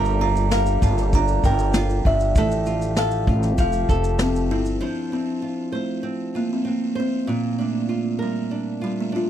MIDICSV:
0, 0, Header, 1, 6, 480
1, 0, Start_track
1, 0, Key_signature, -1, "major"
1, 0, Tempo, 615385
1, 1835, Time_signature, 4, 2, 24, 8
1, 7253, End_track
2, 0, Start_track
2, 0, Title_t, "Nylon-string guitar"
2, 0, Program_c, 0, 24
2, 0, Note_on_c, 0, 50, 82
2, 0, Note_on_c, 0, 55, 86
2, 0, Note_on_c, 0, 62, 59
2, 0, Note_on_c, 0, 65, 68
2, 0, Note_on_c, 0, 70, 74
2, 159, Note_off_c, 0, 65, 0
2, 162, Note_on_c, 0, 65, 62
2, 391, Note_off_c, 0, 70, 0
2, 400, Note_on_c, 0, 70, 64
2, 639, Note_off_c, 0, 65, 0
2, 642, Note_on_c, 0, 65, 62
2, 740, Note_off_c, 0, 50, 0
2, 890, Note_off_c, 0, 62, 0
2, 893, Note_on_c, 0, 62, 71
2, 1118, Note_off_c, 0, 70, 0
2, 1131, Note_on_c, 0, 70, 63
2, 1370, Note_off_c, 0, 65, 0
2, 1373, Note_on_c, 0, 65, 68
2, 1597, Note_off_c, 0, 62, 0
2, 1606, Note_on_c, 0, 62, 57
2, 1837, Note_off_c, 0, 55, 0
2, 1842, Note_off_c, 0, 70, 0
2, 1852, Note_on_c, 0, 45, 85
2, 1856, Note_on_c, 0, 69, 70
2, 1889, Note_off_c, 0, 62, 0
2, 2076, Note_off_c, 0, 65, 0
2, 2079, Note_on_c, 0, 65, 64
2, 2305, Note_off_c, 0, 69, 0
2, 2314, Note_on_c, 0, 69, 61
2, 2562, Note_off_c, 0, 65, 0
2, 2565, Note_on_c, 0, 65, 55
2, 2792, Note_on_c, 0, 53, 85
2, 2842, Note_off_c, 0, 69, 0
2, 2850, Note_off_c, 0, 45, 0
2, 3036, Note_on_c, 0, 69, 65
2, 3517, Note_on_c, 0, 60, 58
2, 3745, Note_off_c, 0, 53, 0
2, 3748, Note_on_c, 0, 53, 69
2, 3749, Note_off_c, 0, 69, 0
2, 3752, Note_on_c, 0, 72, 55
2, 3990, Note_off_c, 0, 60, 0
2, 3993, Note_on_c, 0, 60, 46
2, 4225, Note_off_c, 0, 65, 0
2, 4229, Note_on_c, 0, 65, 45
2, 4455, Note_off_c, 0, 72, 0
2, 4464, Note_on_c, 0, 72, 49
2, 4693, Note_off_c, 0, 60, 0
2, 4703, Note_on_c, 0, 60, 51
2, 4948, Note_off_c, 0, 65, 0
2, 4952, Note_on_c, 0, 65, 45
2, 5175, Note_off_c, 0, 60, 0
2, 5185, Note_on_c, 0, 60, 44
2, 5414, Note_off_c, 0, 72, 0
2, 5424, Note_on_c, 0, 72, 50
2, 5671, Note_off_c, 0, 72, 0
2, 5673, Note_on_c, 0, 46, 63
2, 5720, Note_off_c, 0, 60, 0
2, 5916, Note_on_c, 0, 62, 48
2, 6150, Note_off_c, 0, 65, 0
2, 6153, Note_on_c, 0, 65, 47
2, 6386, Note_on_c, 0, 70, 51
2, 6478, Note_off_c, 0, 53, 0
2, 6630, Note_off_c, 0, 62, 0
2, 6639, Note_on_c, 0, 62, 47
2, 6866, Note_off_c, 0, 65, 0
2, 6875, Note_on_c, 0, 65, 47
2, 7106, Note_off_c, 0, 62, 0
2, 7116, Note_on_c, 0, 62, 46
2, 7253, Note_off_c, 0, 46, 0
2, 7253, Note_off_c, 0, 62, 0
2, 7253, Note_off_c, 0, 65, 0
2, 7253, Note_off_c, 0, 70, 0
2, 7253, End_track
3, 0, Start_track
3, 0, Title_t, "Kalimba"
3, 0, Program_c, 1, 108
3, 0, Note_on_c, 1, 82, 93
3, 157, Note_off_c, 1, 82, 0
3, 166, Note_on_c, 1, 82, 92
3, 404, Note_on_c, 1, 77, 84
3, 410, Note_off_c, 1, 82, 0
3, 625, Note_off_c, 1, 77, 0
3, 650, Note_on_c, 1, 81, 77
3, 891, Note_off_c, 1, 81, 0
3, 897, Note_on_c, 1, 82, 88
3, 1001, Note_off_c, 1, 82, 0
3, 1134, Note_on_c, 1, 79, 91
3, 1372, Note_off_c, 1, 79, 0
3, 1376, Note_on_c, 1, 74, 75
3, 1610, Note_on_c, 1, 76, 86
3, 1613, Note_off_c, 1, 74, 0
3, 1849, Note_off_c, 1, 76, 0
3, 1858, Note_on_c, 1, 74, 85
3, 2328, Note_on_c, 1, 77, 84
3, 2340, Note_off_c, 1, 74, 0
3, 2800, Note_off_c, 1, 77, 0
3, 2809, Note_on_c, 1, 77, 72
3, 3282, Note_on_c, 1, 60, 82
3, 3490, Note_off_c, 1, 77, 0
3, 3520, Note_on_c, 1, 64, 89
3, 3525, Note_off_c, 1, 60, 0
3, 3757, Note_on_c, 1, 62, 71
3, 3764, Note_off_c, 1, 64, 0
3, 3865, Note_off_c, 1, 62, 0
3, 4004, Note_on_c, 1, 60, 65
3, 4485, Note_on_c, 1, 57, 59
3, 4493, Note_off_c, 1, 60, 0
3, 4962, Note_on_c, 1, 58, 73
3, 4975, Note_off_c, 1, 57, 0
3, 5083, Note_off_c, 1, 58, 0
3, 5092, Note_on_c, 1, 60, 65
3, 5203, Note_on_c, 1, 58, 60
3, 5207, Note_off_c, 1, 60, 0
3, 5447, Note_off_c, 1, 58, 0
3, 5459, Note_on_c, 1, 60, 76
3, 5689, Note_on_c, 1, 58, 71
3, 5695, Note_off_c, 1, 60, 0
3, 5795, Note_off_c, 1, 58, 0
3, 5934, Note_on_c, 1, 57, 69
3, 6416, Note_on_c, 1, 55, 67
3, 6422, Note_off_c, 1, 57, 0
3, 6885, Note_off_c, 1, 55, 0
3, 6894, Note_on_c, 1, 55, 77
3, 6945, Note_off_c, 1, 55, 0
3, 7024, Note_on_c, 1, 57, 72
3, 7125, Note_off_c, 1, 57, 0
3, 7145, Note_on_c, 1, 65, 71
3, 7253, Note_off_c, 1, 65, 0
3, 7253, End_track
4, 0, Start_track
4, 0, Title_t, "Harmonium"
4, 0, Program_c, 2, 20
4, 0, Note_on_c, 2, 50, 72
4, 0, Note_on_c, 2, 55, 74
4, 0, Note_on_c, 2, 58, 76
4, 0, Note_on_c, 2, 67, 86
4, 1816, Note_off_c, 2, 58, 0
4, 1817, Note_off_c, 2, 55, 0
4, 1839, Note_on_c, 2, 57, 70
4, 1840, Note_on_c, 2, 53, 70
4, 2761, Note_off_c, 2, 50, 0
4, 2779, Note_off_c, 2, 53, 0
4, 2791, Note_on_c, 2, 53, 70
4, 2792, Note_on_c, 2, 48, 76
4, 3715, Note_off_c, 2, 67, 0
4, 3736, Note_off_c, 2, 57, 0
4, 3742, Note_off_c, 2, 53, 0
4, 3743, Note_off_c, 2, 48, 0
4, 7253, End_track
5, 0, Start_track
5, 0, Title_t, "Upright bass"
5, 0, Program_c, 3, 32
5, 0, Note_on_c, 3, 31, 103
5, 609, Note_off_c, 3, 31, 0
5, 641, Note_on_c, 3, 31, 103
5, 1087, Note_off_c, 3, 31, 0
5, 1123, Note_on_c, 3, 31, 103
5, 1568, Note_off_c, 3, 31, 0
5, 1601, Note_on_c, 3, 31, 85
5, 1819, Note_off_c, 3, 31, 0
5, 1837, Note_on_c, 3, 33, 97
5, 2524, Note_off_c, 3, 33, 0
5, 2554, Note_on_c, 3, 33, 111
5, 2793, Note_off_c, 3, 33, 0
5, 2793, Note_on_c, 3, 29, 106
5, 3014, Note_off_c, 3, 29, 0
5, 3034, Note_on_c, 3, 29, 80
5, 3517, Note_off_c, 3, 29, 0
5, 3517, Note_on_c, 3, 31, 89
5, 3736, Note_off_c, 3, 31, 0
5, 7253, End_track
6, 0, Start_track
6, 0, Title_t, "Drums"
6, 39, Note_on_c, 9, 82, 47
6, 117, Note_off_c, 9, 82, 0
6, 282, Note_on_c, 9, 82, 60
6, 360, Note_off_c, 9, 82, 0
6, 400, Note_on_c, 9, 38, 95
6, 402, Note_on_c, 9, 82, 62
6, 478, Note_off_c, 9, 38, 0
6, 480, Note_off_c, 9, 82, 0
6, 517, Note_on_c, 9, 82, 55
6, 595, Note_off_c, 9, 82, 0
6, 641, Note_on_c, 9, 36, 94
6, 643, Note_on_c, 9, 82, 64
6, 719, Note_off_c, 9, 36, 0
6, 721, Note_off_c, 9, 82, 0
6, 760, Note_on_c, 9, 38, 36
6, 763, Note_on_c, 9, 82, 58
6, 838, Note_off_c, 9, 38, 0
6, 841, Note_off_c, 9, 82, 0
6, 881, Note_on_c, 9, 82, 64
6, 882, Note_on_c, 9, 36, 91
6, 959, Note_off_c, 9, 82, 0
6, 960, Note_off_c, 9, 36, 0
6, 998, Note_on_c, 9, 82, 53
6, 1076, Note_off_c, 9, 82, 0
6, 1120, Note_on_c, 9, 36, 82
6, 1123, Note_on_c, 9, 82, 46
6, 1198, Note_off_c, 9, 36, 0
6, 1201, Note_off_c, 9, 82, 0
6, 1239, Note_on_c, 9, 82, 57
6, 1317, Note_off_c, 9, 82, 0
6, 1355, Note_on_c, 9, 38, 117
6, 1356, Note_on_c, 9, 82, 77
6, 1433, Note_off_c, 9, 38, 0
6, 1434, Note_off_c, 9, 82, 0
6, 1482, Note_on_c, 9, 82, 53
6, 1560, Note_off_c, 9, 82, 0
6, 1600, Note_on_c, 9, 36, 89
6, 1678, Note_off_c, 9, 36, 0
6, 1718, Note_on_c, 9, 82, 52
6, 1796, Note_off_c, 9, 82, 0
6, 1837, Note_on_c, 9, 82, 71
6, 1838, Note_on_c, 9, 36, 118
6, 1915, Note_off_c, 9, 82, 0
6, 1916, Note_off_c, 9, 36, 0
6, 1962, Note_on_c, 9, 82, 54
6, 2040, Note_off_c, 9, 82, 0
6, 2077, Note_on_c, 9, 82, 51
6, 2155, Note_off_c, 9, 82, 0
6, 2198, Note_on_c, 9, 82, 55
6, 2276, Note_off_c, 9, 82, 0
6, 2312, Note_on_c, 9, 38, 99
6, 2313, Note_on_c, 9, 82, 56
6, 2390, Note_off_c, 9, 38, 0
6, 2391, Note_off_c, 9, 82, 0
6, 2426, Note_on_c, 9, 82, 51
6, 2504, Note_off_c, 9, 82, 0
6, 2553, Note_on_c, 9, 36, 88
6, 2631, Note_off_c, 9, 36, 0
6, 2671, Note_on_c, 9, 38, 35
6, 2675, Note_on_c, 9, 82, 58
6, 2749, Note_off_c, 9, 38, 0
6, 2753, Note_off_c, 9, 82, 0
6, 2793, Note_on_c, 9, 82, 64
6, 2795, Note_on_c, 9, 36, 90
6, 2871, Note_off_c, 9, 82, 0
6, 2873, Note_off_c, 9, 36, 0
6, 2907, Note_on_c, 9, 82, 52
6, 2985, Note_off_c, 9, 82, 0
6, 3033, Note_on_c, 9, 36, 79
6, 3037, Note_on_c, 9, 82, 43
6, 3111, Note_off_c, 9, 36, 0
6, 3115, Note_off_c, 9, 82, 0
6, 3151, Note_on_c, 9, 82, 56
6, 3229, Note_off_c, 9, 82, 0
6, 3267, Note_on_c, 9, 38, 111
6, 3268, Note_on_c, 9, 82, 72
6, 3345, Note_off_c, 9, 38, 0
6, 3346, Note_off_c, 9, 82, 0
6, 3398, Note_on_c, 9, 82, 53
6, 3476, Note_off_c, 9, 82, 0
6, 3631, Note_on_c, 9, 82, 52
6, 3709, Note_off_c, 9, 82, 0
6, 7253, End_track
0, 0, End_of_file